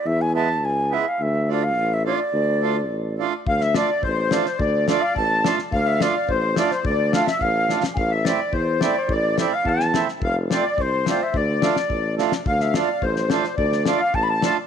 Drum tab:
SD |--------|--------|--------|-oo---oo|
BD |--------|--------|--------|o---o---|

SD |--o---oo|--o---oo|--oo--oo|--o---o-|
BD |o---o---|o---o---|o---o---|o---o---|

SD |--o--ooo|--o---o-|--oo--oo|-oo--ooo|
BD |o---o---|o---o---|o---o---|o---o---|

SD |-oo---o-|
BD |o---o---|